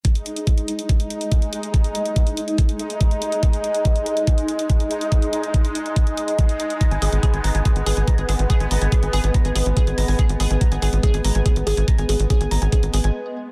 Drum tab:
HH |xxxxxxxxxxxxxxxx|xxxxxxxxxxxxxxxx|xxxxxxxxxxxxxxxx|xxxxxxxxxxxxxxxx|
BD |o---o---o---o---|o---o---o---o---|o---o---o---o---|o---o---o---o---|

HH |xxoxxxoxxxoxxxox|xxoxxxoxxxoxxxoo|xxoxxxoxxxoxxxox|xxoxxxoxxxox----|
BD |o---o---o---o---|o---o---o---o---|o---o---o---o---|o---o---o-------|